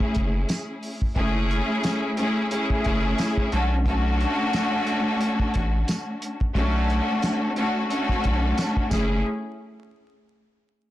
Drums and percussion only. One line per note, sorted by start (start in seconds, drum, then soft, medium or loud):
0.00 kick medium
0.15 kick loud
0.15 closed hi-hat medium
0.49 snare loud
0.49 closed hi-hat medium
0.49 tambourine medium
0.83 open hi-hat medium
1.02 kick loud
1.16 kick loud
1.16 closed hi-hat medium
1.51 closed hi-hat medium
1.83 snare loud
1.83 closed hi-hat medium
1.83 tambourine medium
2.17 closed hi-hat medium
2.51 closed hi-hat loud
2.70 kick medium
2.84 kick loud
2.84 closed hi-hat medium
3.18 snare loud
3.18 closed hi-hat loud
3.18 tambourine medium
3.38 kick loud
3.52 closed hi-hat medium
3.86 kick loud
3.86 closed hi-hat medium
4.21 closed hi-hat medium
4.53 snare loud
4.53 closed hi-hat medium
4.53 tambourine medium
4.87 closed hi-hat medium
5.21 closed hi-hat loud
5.40 kick medium
5.54 kick loud
5.54 closed hi-hat medium
5.88 snare loud
5.88 closed hi-hat loud
5.88 tambourine medium
6.22 closed hi-hat medium
6.41 kick loud
6.55 kick loud
6.55 closed hi-hat medium
6.90 closed hi-hat medium
7.22 snare loud
7.22 closed hi-hat medium
7.22 tambourine medium
7.56 closed hi-hat medium
7.90 closed hi-hat loud
8.09 kick medium
8.09 snare soft
8.24 kick loud
8.24 closed hi-hat medium
8.58 snare loud
8.58 closed hi-hat loud
8.58 tambourine medium
8.77 kick loud
8.91 kick loud
8.91 snare medium
8.91 tambourine medium